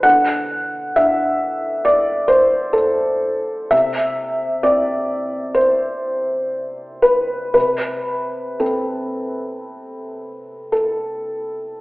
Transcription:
X:1
M:4/4
L:1/8
Q:1/4=62
K:Clyd
V:1 name="Felt piano"
f2 e2 d c A2 | e2 d2 c3 B | B2 A4 A2 |]
V:2 name="Felt piano" clef=bass
D,2 D6 | C,2 C6 | C,2 C6 |]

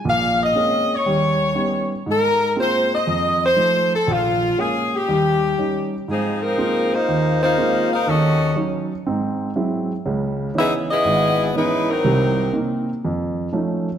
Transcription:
X:1
M:4/4
L:1/8
Q:"Swing" 1/4=120
K:Ab
V:1 name="Saxophone section"
f e2 d4 z | B2 c e2 c2 =A | F2 A G4 z | [F,CEA] [F,CEB]2 [B,EFc]2 [B,EFc]2 [EBcf] |
[D_G=Ae]2 z6 | z2 [_CEA_f] [C_FAe]3 [A,EF_c] [_G,=CEB]- | [_G,CEB]2 z6 |]
V:2 name="Grand piano"
[B,,,B,,]2 [A,B,CD] z [E,,G,]2 [G,=B,DE] z | A,,2 [A,B,CF] z F,,2 [F,=A,E] z | B,,,2 [A,B,D] z [E,,G,]2 [G,DE] z | A,,2 [A,B,CF] z E,,2 [A,B,CF] z |
[E,,E,]2 [_G,DE] z [A,,C]2 [G,A,C=E] z | [D,,D,]2 [_F,_CDE] z A,,,2 [F,CDE] z | [C,,C,]2 [B,CE] z F,,2 [F,=A,^CE] z |]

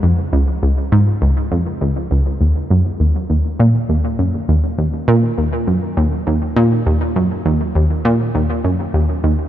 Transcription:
X:1
M:4/4
L:1/8
Q:1/4=101
K:Ebm
V:1 name="Synth arpeggio sound" clef=bass
F,, D,, D,, A,, D,, F,, D,, D,, | E,, G,, E,, E,, B,, E,, G,, E,, | E,, B,, E,, G,, E,, E,, B,, E,, | G,, E,, E,, B,, E,, G,, E,, E,, |]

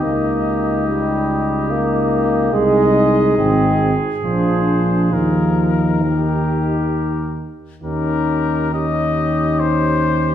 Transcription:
X:1
M:3/4
L:1/8
Q:1/4=70
K:Eb
V:1 name="Trumpet"
e6 | e3 z c2 | B4- B z | B2 e2 c2 |]
V:2 name="Flugelhorn"
G6 | A6- | A z G3 z | G2 G4 |]
V:3 name="French horn"
E6 | E3 z D2 | E4- E z | E2 E4 |]
V:4 name="Trombone"
B,2 G,2 B,2 | A,2 C z F,2 | F,2 E,3 z | _D2 D4 |]
V:5 name="Tuba" clef=bass
_D,,6 | C,,2 A,,, z B,,,2 | E,,4- E,, z | E,,6 |]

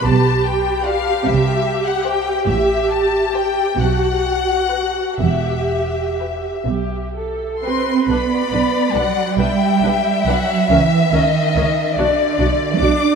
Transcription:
X:1
M:6/8
L:1/16
Q:3/8=46
K:Em
V:1 name="Violin section"
a2 g2 =f2 e3 ^f g2 | e2 a2 g2 f6 | e6 z4 c'2 | [K:Bm] b4 f2 g4 f2 |
e2 ^d4 =d4 d'2 |]
V:2 name="Violin section"
z4 [=Fd]2 z4 [Gc]2 | z4 [Gc]2 z4 [FB]2 | z4 [GB]2 z4 [GB]2 | [K:Bm] d6 e6- |
e6 d6 |]
V:3 name="Viola section"
G12- | G6 F6 | G6 G2 A2 B2 | [K:Bm] [DB]2 [DB]2 [DB]2 [DB]2 [DB]2 [DB]2 |
[C^A]2 [CA]2 [CA]2 [DF]2 [DF]2 [DF]2 |]
V:4 name="Cello section" clef=bass
B,,6 C,6 | A,,6 B,,6 | E,,6 B,,4 C2 | [K:Bm] B,4 F,2 G,4 F,2 |
E,2 ^D,4 =D,4 D2 |]
V:5 name="Double bass section" clef=bass
B,,,6 C,,6 | A,,,6 B,,,6 | E,,,6 B,,,6 | [K:Bm] B,,,2 B,,,2 B,,,2 B,,,2 B,,,2 B,,,2 |
C,,2 C,,2 C,,2 B,,,2 B,,,2 B,,,2 |]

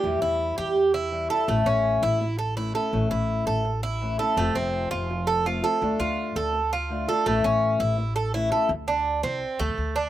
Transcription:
X:1
M:4/4
L:1/16
Q:1/4=166
K:Aphr
V:1 name="Cuban tres"
G2 E4 G4 E4 A2 | A,2 ^C4 E4 A2 E2 A2- | A2 E4 A4 E4 A2 | A,2 C4 F4 A2 F2 A2- |
A2 F4 A4 F4 A2 | A,2 ^C4 E4 A2 E2 A2 | [K:Cmix] z2 D4 C4 A,4 D2 |]
V:2 name="Steel-string acoustic guitar"
[E,G,E]8 z4 [E,G,E]2 [G,E]2 | [E,A,^CE]8 z4 [E,A,CE]2 [A,CE]2 | [E,A,^CE]8 z4 [E,A,CE]2 [A,CE]2 | [C,F,A,CF]8 z4 [F,A,CF]2 [F,A,CF]2 |
[D,A,DF]8 z4 [D,A,DF]2 [A,DF]2 | [E,A,^CE]8 z4 [E,A,CE]2 [A,CE]2 | [K:Cmix] z16 |]
V:3 name="Upright bass" clef=bass
E,,2 E,,4 E,,8 z2 | A,,,2 A,,,4 A,,,8 z2 | A,,,2 A,,,4 A,,,8 z2 | F,,,2 F,,,4 F,,,8 z2 |
D,,2 D,,4 D,,8 z2 | A,,,2 A,,,4 A,,,8 z2 | [K:Cmix] D,,6 C,,2 z2 D,, D, D,,4 |]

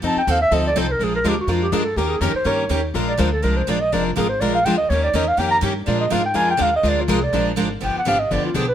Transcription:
X:1
M:4/4
L:1/16
Q:"Swing" 1/4=246
K:Bbmix
V:1 name="Clarinet"
=a2 g2 f2 =e2 _e2 d2 c2 B2 | A2 B2 G2 _G2 F2 =G2 A2 =A2 | G2 A2 B2 c2 _d6- d z | z2 d2 c2 =A2 B2 c2 d2 e2 |
d2 F2 A2 c2 d2 f2 g2 e2 | _d2 =d2 e2 f2 g2 b2 z4 | d2 e2 f2 g2 a2 g2 f2 e2 | d2 F2 A2 d4 z6 |
g2 _g2 f2 e2 d2 F2 A2 =B2 |]
V:2 name="Steel-string acoustic guitar"
[F,CE=A]2 z2 [F,CEA]2 z2 [F,CEA]2 z2 [F,CEA]2 z2 | [F,A,DFB]2 z2 [F,A,DFB]2 z2 [F,A,DFB]2 z2 [F,A,DFB]2 z2 | [E,B,_DGB]2 z2 [E,B,DGB]2 z2 [E,B,DGB]2 z2 [E,B,DGB]2 z2 | [F,A,DFB]2 z2 [F,A,DFB]2 z2 [F,A,DFB]2 z2 [F,A,DFB]2 z2 |
[F,A,DFB]2 z2 [F,A,DFB]2 z2 [F,A,DFB]2 z2 [F,A,DFB]2 z2 | [E,B,_DGB]2 z2 [E,B,DGB]2 z2 [E,B,DGB]2 z2 [E,B,DGB]2 z2 | [F,A,DFB]2 z2 [F,A,DFB]2 z2 [F,A,DFB]2 z2 [F,A,DFB]2 z2 | [F,A,DFB]2 z2 [F,A,DFB]2 z2 [F,A,DFB]2 z2 [F,A,DFB]2 z2 |
[D,F,=B,DG]2 z2 [D,F,B,DG]2 z2 [D,F,B,DG]2 z2 [D,F,B,DG]2 z2 |]
V:3 name="Steel-string acoustic guitar"
[F,CE=A]2 z2 [F,CEA]2 z2 [F,CEA]2 z2 [F,CEA]2 z2 | [F,A,DFB]2 z2 [F,A,DFB]2 z2 [F,A,DFB]2 z2 [F,A,DFB]2 z2 | [E,B,_DGB]2 z2 [E,B,DGB]2 z2 [E,B,DGB]2 z2 [E,B,DGB]2 z2 | [F,A,DFB]2 z2 [F,A,DFB]2 z2 [F,A,DFB]2 z2 [F,A,DFB]2 z2 |
[F,A,DFB]2 z2 [F,A,DFB]2 z2 [F,A,DFB]2 z2 [F,A,DFB]2 z2 | [E,B,_DGB]2 z2 [E,B,DGB]2 z2 [E,B,DGB]2 z2 [E,B,DGB]2 z2 | [F,A,DFB]2 z2 [F,A,DFB]2 z2 [F,A,DFB]2 z2 [F,A,DFB]2 z2 | [F,A,DFB]2 z2 [F,A,DFB]2 z2 [F,A,DFB]2 z2 [F,A,DFB]2 z2 |
[D,F,=B,DG]2 z2 [D,F,B,DG]2 z2 [D,F,B,DG]2 z2 [D,F,B,DG]2 z2 |]
V:4 name="Upright bass" clef=bass
F,,2 z2 E,,4 D,,4 C,,4 | B,,,4 D,,4 F,,4 G,,4 | E,,4 F,,2 z2 G,,4 E,,4 | B,,,4 D,,4 C,,4 B,,,4 |
F,,,4 A,,,4 B,,,4 D,,4 | E,,4 =E,,4 F,,4 G,,4 | B,,4 A,,4 F,,4 E,,4 | D,,4 C,,4 B,,,4 A,,,4 |
G,,,2 z2 A,,,4 G,,,2 z2 =B,,,4 |]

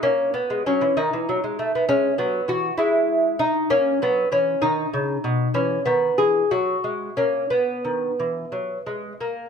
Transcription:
X:1
M:6/8
L:1/16
Q:3/8=65
K:Bmix
V:1 name="Lute"
C2 B,2 C2 D6 | [K:B] C2 B,2 F2 E4 D2 | C2 B,2 C2 D6 | C2 B,2 G2 F4 C2 |
B,8- B,2 z2 |]
V:2 name="Lute" clef=bass
^A,3 G, F, E, D, E, F, G, =A, B, | [K:B] G,2 F,2 E,2 G,6 | A,2 F,2 E,2 D,2 C,2 B,,2 | E,2 D,2 E,2 F,2 G,2 A,2 |
z2 D,2 E,2 F,2 G,2 A,2 |]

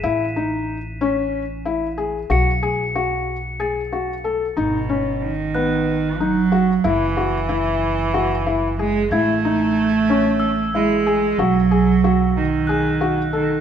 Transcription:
X:1
M:7/8
L:1/8
Q:1/4=93
K:Bmix
V:1 name="Crotales"
[b'd''e'']2 z4 z | c''4 a'3- | a' z2 f'4- | f' z6 |
g'4 e'3- | e' z3 f'3 |]
V:2 name="Felt piano"
E D2 C2 E G | F G F2 G F A | D C2 B,2 D F | E F E2 F E G |
E D2 C2 E G | F G F2 G F A |]
V:3 name="Cello" clef=bass
z6 z | z6 z | B,,2 D,3 F,2 | E,6 G, |
A,4- A, G,2 | F,3 D,3 D, |]
V:4 name="Upright bass" clef=bass
A,,,6- A,,, | B,,,6- B,,, | G,,,6- G,,, | F,,,6- F,,, |
A,,,6- A,,, | B,,,6- B,,, |]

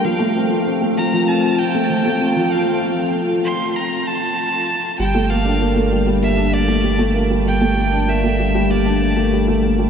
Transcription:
X:1
M:4/4
L:1/16
Q:1/4=97
K:F
V:1 name="Violin"
f4 z2 b2 a2 g6 | f4 z2 c'2 b2 a6 | g2 f4 z2 e2 d4 z2 | g4 e4 d6 z2 |]
V:2 name="Felt piano"
F, A, C F C A, F, F, C F C A, F, A, C F, | z16 | G, A, B, D B, A, G, G, B, D B, A, G, A, B, G, | G, A, B, D B, A, G, G, B, D B, A, G, A, B, G, |]
V:3 name="Sub bass" clef=bass
z16 | z16 | G,,,16- | G,,,16 |]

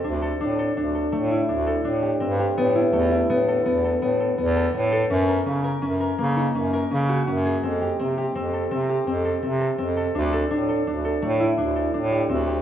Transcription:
X:1
M:7/4
L:1/8
Q:1/4=166
K:Ddor
V:1 name="Harp"
D A D A D A A, E D A D G C G | B, E A, E B, A B, A B, A B, A B, A | _D _B D B D B _B, _E D B D _G D _A | C G C G C A C G C A C A C A |
D A D A D A A, E D A D G C G |]
V:2 name="Bass clarinet" clef=bass
D,,2 A,,2 D,,2 A,,2 D,,2 A,,2 G,,2 | A,,2 E,,2 A,,2 E,,2 A,,2 E,,2 A,,2 | _G,,2 _D,2 G,,2 D,2 G,,2 D,2 G,,2 | F,,2 C,2 F,,2 C,2 F,,2 C,2 F,,2 |
D,,2 A,,2 D,,2 A,,2 D,,2 A,,2 D,,2 |]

